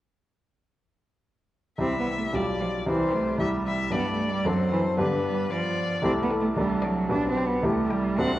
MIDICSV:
0, 0, Header, 1, 4, 480
1, 0, Start_track
1, 0, Key_signature, 0, "major"
1, 0, Tempo, 542495
1, 1601, Time_signature, 2, 2, 24, 8
1, 2557, Tempo, 526316
1, 5917, Tempo, 537153
1, 7541, End_track
2, 0, Start_track
2, 0, Title_t, "Violin"
2, 0, Program_c, 0, 40
2, 1599, Note_on_c, 0, 76, 41
2, 2076, Note_on_c, 0, 74, 41
2, 2090, Note_off_c, 0, 76, 0
2, 2552, Note_off_c, 0, 74, 0
2, 2557, Note_on_c, 0, 72, 43
2, 3013, Note_off_c, 0, 72, 0
2, 3018, Note_on_c, 0, 76, 45
2, 3091, Note_off_c, 0, 76, 0
2, 3269, Note_on_c, 0, 76, 51
2, 3496, Note_on_c, 0, 74, 41
2, 3510, Note_off_c, 0, 76, 0
2, 3991, Note_on_c, 0, 72, 48
2, 4004, Note_off_c, 0, 74, 0
2, 4473, Note_off_c, 0, 72, 0
2, 4480, Note_on_c, 0, 71, 44
2, 4949, Note_on_c, 0, 74, 53
2, 4963, Note_off_c, 0, 71, 0
2, 5430, Note_off_c, 0, 74, 0
2, 5672, Note_on_c, 0, 69, 57
2, 5853, Note_off_c, 0, 69, 0
2, 6144, Note_on_c, 0, 74, 51
2, 6325, Note_off_c, 0, 74, 0
2, 6629, Note_on_c, 0, 79, 55
2, 6808, Note_off_c, 0, 79, 0
2, 7109, Note_on_c, 0, 79, 51
2, 7291, Note_off_c, 0, 79, 0
2, 7364, Note_on_c, 0, 78, 46
2, 7541, Note_off_c, 0, 78, 0
2, 7541, End_track
3, 0, Start_track
3, 0, Title_t, "Grand piano"
3, 0, Program_c, 1, 0
3, 1574, Note_on_c, 1, 36, 39
3, 1578, Note_on_c, 1, 55, 34
3, 1587, Note_on_c, 1, 64, 33
3, 1592, Note_on_c, 1, 67, 31
3, 1779, Control_c, 1, 64, 127
3, 2053, Note_off_c, 1, 36, 0
3, 2054, Note_off_c, 1, 55, 0
3, 2058, Note_off_c, 1, 67, 0
3, 2060, Note_off_c, 1, 64, 0
3, 2063, Note_on_c, 1, 35, 38
3, 2067, Note_on_c, 1, 55, 31
3, 2069, Note_on_c, 1, 65, 30
3, 2072, Note_on_c, 1, 67, 32
3, 2098, Control_c, 1, 64, 0
3, 2268, Control_c, 1, 64, 127
3, 2520, Note_off_c, 1, 55, 0
3, 2533, Note_on_c, 1, 55, 29
3, 2534, Note_off_c, 1, 35, 0
3, 2535, Note_on_c, 1, 36, 40
3, 2537, Note_off_c, 1, 65, 0
3, 2537, Note_off_c, 1, 67, 0
3, 2541, Note_on_c, 1, 64, 29
3, 2550, Note_on_c, 1, 67, 33
3, 2575, Control_c, 1, 64, 0
3, 2705, Control_c, 1, 64, 127
3, 2989, Note_off_c, 1, 36, 0
3, 2995, Note_off_c, 1, 55, 0
3, 3002, Note_off_c, 1, 64, 0
3, 3002, Note_on_c, 1, 36, 39
3, 3007, Note_off_c, 1, 67, 0
3, 3009, Note_on_c, 1, 55, 33
3, 3016, Note_on_c, 1, 64, 32
3, 3021, Note_on_c, 1, 67, 34
3, 3473, Note_off_c, 1, 55, 0
3, 3480, Note_on_c, 1, 43, 42
3, 3484, Note_off_c, 1, 36, 0
3, 3486, Note_off_c, 1, 67, 0
3, 3487, Note_on_c, 1, 55, 35
3, 3491, Note_off_c, 1, 64, 0
3, 3493, Note_on_c, 1, 62, 34
3, 3499, Note_on_c, 1, 67, 36
3, 3532, Control_c, 1, 64, 0
3, 3659, Control_c, 1, 64, 127
3, 3965, Note_off_c, 1, 43, 0
3, 3969, Note_off_c, 1, 55, 0
3, 3970, Note_off_c, 1, 62, 0
3, 3975, Note_off_c, 1, 67, 0
3, 3976, Note_on_c, 1, 42, 45
3, 3979, Note_on_c, 1, 60, 36
3, 3984, Note_on_c, 1, 62, 38
3, 3989, Note_on_c, 1, 69, 39
3, 4017, Control_c, 1, 64, 0
3, 4162, Control_c, 1, 64, 127
3, 4451, Note_off_c, 1, 42, 0
3, 4453, Note_off_c, 1, 60, 0
3, 4455, Note_off_c, 1, 62, 0
3, 4458, Note_off_c, 1, 69, 0
3, 4458, Note_on_c, 1, 43, 45
3, 4460, Note_on_c, 1, 59, 42
3, 4470, Note_on_c, 1, 62, 37
3, 4473, Note_on_c, 1, 67, 38
3, 4493, Control_c, 1, 64, 0
3, 4615, Control_c, 1, 64, 127
3, 5395, Note_off_c, 1, 43, 0
3, 5396, Note_off_c, 1, 59, 0
3, 5402, Note_off_c, 1, 62, 0
3, 5403, Note_off_c, 1, 67, 0
3, 5413, Note_on_c, 1, 36, 45
3, 5419, Note_on_c, 1, 57, 42
3, 5424, Note_on_c, 1, 64, 41
3, 5426, Note_on_c, 1, 67, 44
3, 5451, Control_c, 1, 64, 0
3, 5597, Control_c, 1, 64, 127
3, 5891, Note_off_c, 1, 36, 0
3, 5894, Note_off_c, 1, 57, 0
3, 5897, Note_off_c, 1, 64, 0
3, 5898, Note_off_c, 1, 67, 0
3, 5906, Note_on_c, 1, 36, 45
3, 5914, Note_on_c, 1, 57, 39
3, 5917, Note_on_c, 1, 62, 38
3, 5922, Note_on_c, 1, 69, 40
3, 5933, Control_c, 1, 64, 0
3, 6093, Control_c, 1, 64, 127
3, 6371, Note_off_c, 1, 36, 0
3, 6375, Note_off_c, 1, 57, 0
3, 6376, Note_off_c, 1, 62, 0
3, 6377, Note_on_c, 1, 35, 43
3, 6379, Note_off_c, 1, 69, 0
3, 6380, Note_on_c, 1, 59, 37
3, 6391, Note_on_c, 1, 62, 40
3, 6393, Note_on_c, 1, 67, 36
3, 6406, Control_c, 1, 64, 0
3, 6576, Control_c, 1, 64, 127
3, 6848, Note_off_c, 1, 35, 0
3, 6849, Note_off_c, 1, 59, 0
3, 6855, Note_off_c, 1, 62, 0
3, 6855, Note_off_c, 1, 67, 0
3, 6856, Note_on_c, 1, 36, 49
3, 6860, Note_on_c, 1, 57, 40
3, 6863, Note_on_c, 1, 64, 38
3, 6869, Note_on_c, 1, 67, 39
3, 6886, Control_c, 1, 64, 0
3, 7030, Control_c, 1, 64, 127
3, 7333, Note_off_c, 1, 36, 0
3, 7336, Note_off_c, 1, 57, 0
3, 7337, Note_off_c, 1, 64, 0
3, 7340, Note_off_c, 1, 67, 0
3, 7352, Note_on_c, 1, 57, 33
3, 7355, Note_on_c, 1, 36, 40
3, 7356, Note_on_c, 1, 62, 39
3, 7365, Note_on_c, 1, 66, 34
3, 7371, Control_c, 1, 64, 0
3, 7540, Control_c, 1, 64, 127
3, 7541, Note_off_c, 1, 36, 0
3, 7541, Note_off_c, 1, 57, 0
3, 7541, Note_off_c, 1, 62, 0
3, 7541, Note_off_c, 1, 66, 0
3, 7541, End_track
4, 0, Start_track
4, 0, Title_t, "Cello"
4, 0, Program_c, 2, 42
4, 1594, Note_on_c, 2, 60, 55
4, 1746, Note_off_c, 2, 60, 0
4, 1765, Note_on_c, 2, 59, 55
4, 1828, Note_off_c, 2, 59, 0
4, 1918, Note_on_c, 2, 57, 51
4, 1982, Note_off_c, 2, 57, 0
4, 2075, Note_on_c, 2, 55, 53
4, 2145, Note_off_c, 2, 55, 0
4, 2303, Note_on_c, 2, 53, 57
4, 2374, Note_off_c, 2, 53, 0
4, 2543, Note_on_c, 2, 52, 53
4, 2780, Note_on_c, 2, 57, 59
4, 2794, Note_off_c, 2, 52, 0
4, 3035, Note_on_c, 2, 55, 51
4, 3049, Note_off_c, 2, 57, 0
4, 3504, Note_off_c, 2, 55, 0
4, 3509, Note_on_c, 2, 59, 55
4, 3670, Note_off_c, 2, 59, 0
4, 3676, Note_on_c, 2, 57, 55
4, 3852, Note_on_c, 2, 55, 61
4, 3866, Note_off_c, 2, 57, 0
4, 4004, Note_on_c, 2, 54, 63
4, 4018, Note_off_c, 2, 55, 0
4, 4221, Note_off_c, 2, 54, 0
4, 4227, Note_on_c, 2, 52, 63
4, 4300, Note_off_c, 2, 52, 0
4, 4474, Note_on_c, 2, 50, 53
4, 4710, Note_off_c, 2, 50, 0
4, 4715, Note_on_c, 2, 55, 64
4, 4948, Note_off_c, 2, 55, 0
4, 4953, Note_on_c, 2, 53, 62
4, 5422, Note_off_c, 2, 53, 0
4, 5431, Note_on_c, 2, 60, 67
4, 5495, Note_off_c, 2, 60, 0
4, 5600, Note_on_c, 2, 59, 66
4, 5664, Note_off_c, 2, 59, 0
4, 5763, Note_on_c, 2, 57, 67
4, 5826, Note_off_c, 2, 57, 0
4, 5903, Note_on_c, 2, 55, 64
4, 6149, Note_on_c, 2, 54, 67
4, 6162, Note_off_c, 2, 55, 0
4, 6396, Note_on_c, 2, 62, 73
4, 6409, Note_off_c, 2, 54, 0
4, 6551, Note_off_c, 2, 62, 0
4, 6561, Note_on_c, 2, 60, 67
4, 6718, Note_on_c, 2, 59, 64
4, 6731, Note_off_c, 2, 60, 0
4, 6875, Note_on_c, 2, 57, 65
4, 6888, Note_off_c, 2, 59, 0
4, 7115, Note_on_c, 2, 55, 70
4, 7129, Note_off_c, 2, 57, 0
4, 7358, Note_on_c, 2, 60, 73
4, 7371, Note_off_c, 2, 55, 0
4, 7518, Note_off_c, 2, 60, 0
4, 7541, End_track
0, 0, End_of_file